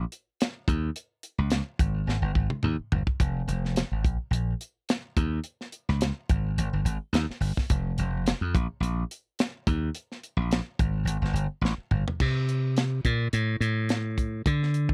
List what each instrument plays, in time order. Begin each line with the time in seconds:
0.12 closed hi-hat
0.41 snare, closed hi-hat
0.68 slap bass D#2, kick, closed hi-hat
0.96 closed hi-hat
1.23 closed hi-hat
1.38 slap bass C#2
1.50 snare, closed hi-hat
1.79 slap bass G#1, kick, closed hi-hat
2.07 slap bass G#1, snare
2.22 slap bass G1
2.35 slap bass G#1, kick
2.50 mid tom
2.63 slap bass D#2, mid tom
2.79 muted slap bass stroke
2.92 slap bass G1, floor tom
3.07 kick
3.20 slap bass F1, kick, closed hi-hat
3.48 slap bass F1, closed hi-hat
3.65 snare
3.76 snare, closed hi-hat
3.92 slap bass G#1
4.05 slap bass A#1, kick, closed hi-hat
4.31 slap bass A#1, closed hi-hat
4.61 closed hi-hat
4.89 snare, closed hi-hat
5.17 slap bass D#2, kick, closed hi-hat
5.44 closed hi-hat
5.61 snare
5.72 closed hi-hat
5.89 slap bass C#2, snare
6.01 snare, closed hi-hat
6.29 slap bass G#1, kick, closed hi-hat
6.58 slap bass G#1, closed hi-hat
6.73 slap bass G1
6.85 slap bass G#1, closed hi-hat
7.13 slap bass D#2, snare, closed hi-hat
7.29 muted slap bass stroke, snare
7.40 slap bass G1, open hi-hat
7.57 muted slap bass stroke, kick, snare
7.70 slap bass F1, kick, closed hi-hat
7.98 slap bass F1, closed hi-hat
8.26 snare, closed hi-hat
8.41 slap bass F2
8.55 slap bass A#1, kick, closed hi-hat
8.80 slap bass A#1, closed hi-hat
9.11 closed hi-hat
9.39 snare, closed hi-hat
9.67 slap bass D#2, kick, closed hi-hat
9.95 closed hi-hat
10.12 snare
10.23 closed hi-hat
10.37 slap bass A#1
10.51 snare, closed hi-hat
10.79 slap bass G#1, kick, closed hi-hat
11.05 slap bass G#1, closed hi-hat
11.22 slap bass G1, snare
11.33 slap bass G1, closed hi-hat
11.61 slap bass A1, snare
11.78 muted slap bass stroke
11.91 slap bass G1, mid tom
12.08 floor tom
12.20 slap bass C3, kick, crash
12.49 closed hi-hat
12.77 snare, closed hi-hat
13.05 slap bass A#2, kick, closed hi-hat
13.33 slap bass A2, closed hi-hat
13.61 slap bass A2, closed hi-hat
13.89 snare, closed hi-hat
14.18 kick, closed hi-hat
14.46 slap bass D3, kick, closed hi-hat
14.63 snare
14.74 closed hi-hat
14.89 kick